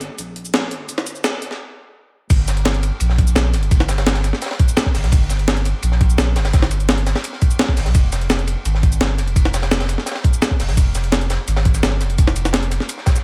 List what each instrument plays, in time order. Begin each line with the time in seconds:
0.01 closed hi-hat, shaker
0.18 sub bass A#1, closed hi-hat, shaker
0.36 closed hi-hat
0.45 shaker
0.53 sub bass A#1, snare, closed hi-hat, shaker
0.71 sub bass G1, closed hi-hat, shaker
0.89 sub bass G1, closed hi-hat, shaker
0.98 snare
1.06 closed hi-hat, shaker
1.15 shaker
1.24 snare, closed hi-hat, shaker
1.42 closed hi-hat, shaker
1.51 snare
2.30 sub bass G1, kick, closed hi-hat, crash, ride, shaker
2.48 snare, closed hi-hat, ride, shaker
2.57 closed hi-hat
2.65 snare, closed hi-hat, ride, shaker
2.74 closed hi-hat, ride
2.83 closed hi-hat, ride, shaker
3.00 sub bass A#1, closed hi-hat, ride, shaker
3.09 snare
3.18 kick, closed hi-hat, ride
3.27 shaker
3.35 sub bass A#1, snare, closed hi-hat, ride, shaker
3.53 sub bass G1, snare, closed hi-hat, ride, shaker
3.63 closed hi-hat
3.71 sub bass G1, kick, closed hi-hat, ride, shaker
3.80 snare, ride
3.88 snare, closed hi-hat, ride, shaker
3.98 snare, closed hi-hat, ride
4.06 snare, closed hi-hat, ride, shaker
4.15 snare, closed hi-hat, ride
4.24 snare, closed hi-hat, ride, shaker
4.33 snare
4.42 snare, closed hi-hat, ride, shaker
4.46 snare, ride
4.51 snare, ride
4.59 kick, closed hi-hat, ride
4.68 shaker
4.76 snare, closed hi-hat, ride, shaker
4.86 kick, snare
4.94 sub bass G1, snare, closed hi-hat, open hi-hat, shaker
5.04 sub bass C2, snare, closed hi-hat
5.12 sub bass G1, kick, closed hi-hat, ride, shaker
5.29 snare, closed hi-hat, ride, shaker
5.39 closed hi-hat
5.48 snare, closed hi-hat, ride, shaker
5.57 closed hi-hat, ride
5.65 closed hi-hat, ride, shaker
5.82 sub bass A#1, closed hi-hat, ride, shaker
5.92 snare
6.01 kick, closed hi-hat, ride
6.10 shaker
6.18 sub bass A#1, snare, closed hi-hat, ride, shaker
6.36 sub bass G1, snare, closed hi-hat, ride, shaker
6.45 snare, closed hi-hat, ride
6.53 sub bass G1, kick, snare, closed hi-hat, ride, shaker
6.62 snare, ride
6.71 closed hi-hat, ride, shaker
6.80 closed hi-hat, shaker
6.89 snare, closed hi-hat, ride, shaker
6.97 closed hi-hat, ride
7.07 snare, closed hi-hat, ride, shaker
7.15 snare, ride
7.24 closed hi-hat, ride, shaker
7.33 snare
7.41 kick, closed hi-hat, ride, shaker
7.51 shaker
7.59 snare, closed hi-hat, ride, shaker
7.68 kick, snare
7.77 sub bass G1, snare, closed hi-hat, open hi-hat, shaker
7.86 sub bass C2, snare, closed hi-hat
7.95 sub bass F1, kick, closed hi-hat, ride, shaker
8.12 snare, closed hi-hat, ride, shaker
8.21 closed hi-hat
8.30 snare, closed hi-hat, ride, shaker
8.39 closed hi-hat, ride
8.47 closed hi-hat, ride, shaker
8.65 sub bass G#1, closed hi-hat, ride, shaker
8.75 snare
8.83 kick, closed hi-hat, ride
8.92 shaker
9.01 sub bass G1, snare, closed hi-hat, ride, shaker
9.18 sub bass F1, snare, closed hi-hat, ride, shaker
9.28 closed hi-hat
9.36 sub bass F1, kick, closed hi-hat, ride, shaker
9.45 snare, ride
9.54 snare, closed hi-hat, ride, shaker
9.62 snare, closed hi-hat, ride
9.71 snare, closed hi-hat, ride, shaker
9.80 snare, closed hi-hat, ride
9.89 snare, closed hi-hat, ride, shaker
9.98 snare
10.06 snare, closed hi-hat, ride, shaker
10.11 snare, ride
10.15 snare, ride
10.24 kick, closed hi-hat, ride
10.33 shaker
10.42 snare, closed hi-hat, ride, shaker
10.50 kick, snare
10.59 sub bass F1, snare, closed hi-hat, open hi-hat, shaker
10.69 sub bass A#1, snare, closed hi-hat
10.77 sub bass F1, kick, closed hi-hat, ride, shaker
10.95 snare, closed hi-hat, ride, shaker
11.04 closed hi-hat
11.12 snare, closed hi-hat, ride, shaker
11.21 closed hi-hat, ride
11.30 snare, closed hi-hat, ride, shaker
11.48 sub bass G#1, snare, closed hi-hat, ride, shaker
11.56 snare, ride
11.65 kick, closed hi-hat
11.74 snare, ride, shaker
11.83 sub bass G1, snare, closed hi-hat, ride, shaker
12.00 sub bass F1, snare, closed hi-hat, ride, shaker
12.10 closed hi-hat
12.18 sub bass F1, kick, closed hi-hat, ride, shaker
12.27 snare, ride
12.36 closed hi-hat, ride, shaker
12.45 snare, closed hi-hat, shaker
12.53 snare, closed hi-hat, ride, shaker
12.63 closed hi-hat, ride
12.70 snare, closed hi-hat, ride, shaker
12.80 snare
12.89 closed hi-hat, ride, shaker
12.98 snare
13.06 kick, snare, closed hi-hat, ride, shaker
13.15 snare, shaker